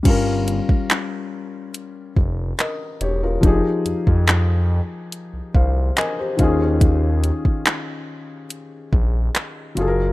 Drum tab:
CC |x---------------|----------------|----------------|
HH |x-x-x---x---x-x-|x-x-x---x---x-x-|x-x-x---x---x-x-|
CP |----x-------x---|----x-------x---|----x-------x---|
BD |o--o------o-----|o--o------o---o-|o--o------o-----|